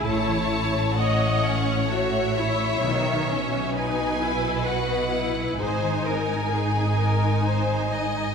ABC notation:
X:1
M:3/4
L:1/16
Q:1/4=65
K:B
V:1 name="Violin section"
=a4 f4 e4- | e4 g4 f4 | g12 |]
V:2 name="Harp"
[=A,,Ecec'] E, E =A c e =a c' a e A E | B,, F,2 F B d f b f d F D | G,, D, D A ^B d a ^b a d A D |]
V:3 name="Violin section"
c4 c8- | c4 B8 | ^B2 A2 G2 A2 B2 d2 |]
V:4 name="Viola section"
E4 d2 C2 F2 E2 | D,2 C2 D2 E2 F2 E2 | D4 D8 |]
V:5 name="Cello section" clef=bass
=A,,12 | B,,12 | G,,12 |]
V:6 name="Double bass section" clef=bass
=A,,,12 | B,,,12 | G,,,12 |]